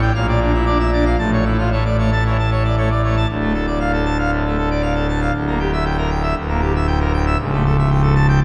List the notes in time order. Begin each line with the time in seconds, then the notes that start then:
Already playing: A1 A2
0.02 G5
0.15 A#1 A#2 F5
0.28 D5
0.41 D4
0.54 E4
0.66 D4 D5
0.80 E5
0.93 D4 D5
1.06 F5
1.19 A1 A2 A5
1.33 C#5
1.46 E4
1.59 F4
1.72 A3 C#5
1.86 D5
1.99 A3 C#5
2.12 A5
2.26 E3 C#5
2.39 A5
2.52 C#5
2.65 D5
2.78 A3 C#5
2.90 D5
3.04 A3 C#5
3.16 A5
3.29 D1 D2
3.41 A3
3.54 A4
3.67 D5
3.80 F5
3.93 A4
4.06 A5
4.19 F5
4.32 A2
4.46 A3
4.58 A4
4.70 D5
4.82 F5
4.95 A4
5.09 A5
5.21 F5
5.34 D1 D2
5.47 A#3
5.60 G4
5.73 E5
5.85 G5
5.98 A#4
6.10 G5
6.23 E5
6.36 D1 D2
6.49 A#3
6.61 G4
6.75 E5
6.87 G5
7.00 A#4
7.13 G5
7.26 E5
7.40 C#1 C#2
7.53 A3
7.66 A4
7.79 E5
7.90 G5
8.03 A4
8.15 A5
8.29 G5
8.41 C#2